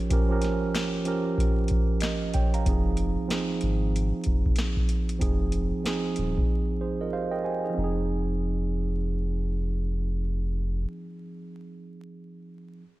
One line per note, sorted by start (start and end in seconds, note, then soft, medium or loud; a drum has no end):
0.00 0.09 F3 medium
0.00 0.11 C#4 medium
0.00 2.68 F4 medium
0.00 0.12 G4 medium
0.00 2.35 C#5 loud
0.09 0.27 F3 medium
0.09 0.28 C#4 medium
0.09 0.28 G4 medium
0.09 0.29 A#4 loud
0.09 kick loud
0.09 closed hi-hat loud
0.29 0.97 F3 medium
0.29 0.98 C#4 medium
0.29 0.98 G4 medium
0.29 0.99 A#4 loud
0.42 snare soft
0.42 closed hi-hat medium
0.75 finger snap medium
0.75 snare loud
0.75 closed hi-hat medium
1.05 2.19 F3 medium
1.05 2.19 C#4 medium
1.05 2.20 G4 medium
1.05 2.01 A#4 medium
1.05 closed hi-hat medium
1.38 kick medium
1.38 closed hi-hat medium
1.68 kick medium
1.68 closed hi-hat medium
2.00 2.33 A#4 medium
2.00 2.32 D#5 medium
2.00 finger snap medium
2.00 snare loud
2.00 closed hi-hat loud
2.34 2.53 C#5 medium
2.34 2.53 G5 medium
2.34 kick loud
2.34 closed hi-hat medium
2.54 2.84 F5 medium
2.54 2.84 A#5 medium
2.54 closed hi-hat medium
2.65 3.16 F1 loud
2.65 3.23 F3 medium
2.65 3.23 C4 medium
2.65 3.24 D#4 medium
2.65 3.24 G#4 medium
2.65 kick loud
2.65 closed hi-hat loud
2.97 closed hi-hat medium
3.28 4.42 F3 medium
3.28 4.43 C4 medium
3.28 4.43 D#4 medium
3.28 4.44 G#4 medium
3.28 snare loud
3.28 closed hi-hat medium
3.61 4.12 G#1 medium
3.61 closed hi-hat medium
3.96 closed hi-hat medium
4.24 4.51 F1 medium
4.24 kick medium
4.24 closed hi-hat medium
4.46 kick medium
4.56 snare loud
4.56 closed hi-hat medium
4.77 kick medium
4.89 closed hi-hat medium
5.09 closed hi-hat medium
5.18 5.72 F1 loud
5.18 5.77 F3 medium
5.18 5.77 C4 medium
5.18 5.78 D#4 medium
5.18 5.79 G#4 loud
5.18 kick loud
5.18 closed hi-hat loud
5.52 closed hi-hat medium
5.83 6.97 F3 medium
5.83 6.98 C4 medium
5.83 6.80 D#4 medium
5.83 6.80 G#4 loud
5.83 snare loud
5.83 closed hi-hat medium
6.16 6.43 D#1 medium
6.16 closed hi-hat medium
6.38 kick medium
6.81 7.00 D#4 medium
6.81 7.00 G#4 medium
6.81 6.99 C5 medium
7.01 7.13 F4 medium
7.01 7.12 A#4 medium
7.01 7.12 D#5 medium
7.13 7.32 G4 medium
7.13 7.32 C5 medium
7.13 7.31 F5 medium
7.31 7.44 A#4 medium
7.31 7.44 D#5 medium
7.31 7.43 G5 medium
7.44 7.64 G4 medium
7.44 7.63 C5 medium
7.44 7.74 G#5 medium
7.65 7.78 D#4 medium
7.65 7.83 G#4 medium
7.70 10.78 F3 medium
7.74 10.86 F1 loud
7.74 10.83 C4 medium
7.79 10.87 D#4 medium
7.84 10.92 G#4 medium